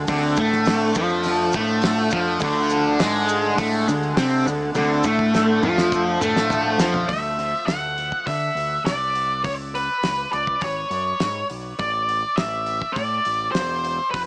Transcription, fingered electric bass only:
0.09 D2
0.38 A2
0.96 F2
1.55 A2
2.13 F2
2.42 D2
3.00 G#2
3.59 A2
3.88 D2
4.17 C3
4.45 D2
4.75 D2
5.05 A2
5.63 F2
6.21 A2
6.78 F2
7.09 D2
7.67 D2
8.28 D3
8.55 D2
8.84 C2
9.45 C#2
10.03 C#2
10.33 C#2
10.62 G#1
10.90 F#2
11.21 G#2
11.51 B1
11.80 A1
12.38 A1
12.97 A2
13.26 A1
13.56 E1
14.14 F1

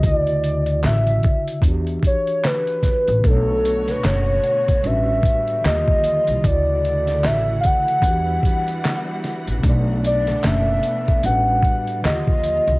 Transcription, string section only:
3.23 D3 A3 B3 F#4 C#5
4.84 G3
5.64 F3 A#3 F4
6.44 E3 A3 E4 F#5
8.04 G3 B3
9.64 A3 B3 D4
11.24 G3
12.03 F3 A#3 F4

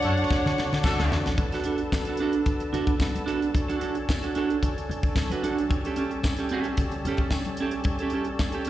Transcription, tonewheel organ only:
Already playing: D3 D4 F#4
1.37 D3 B3 A4
3.53 C#4
5.68 G3

